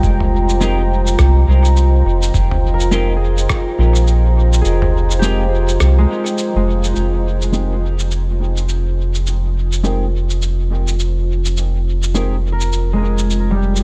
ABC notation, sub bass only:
X:1
M:4/4
L:1/16
Q:"Swing 16ths" 1/4=104
K:Fm
V:1 name="Sub bass" clef=bass
F,,,8 C,,2 C,,4 F,,,2 | F,,,8 z2 B,,,6 | F,,,8 C,,2 z3 F,,,3 | F,,,16- |
F,,,16- | F,,,16 |]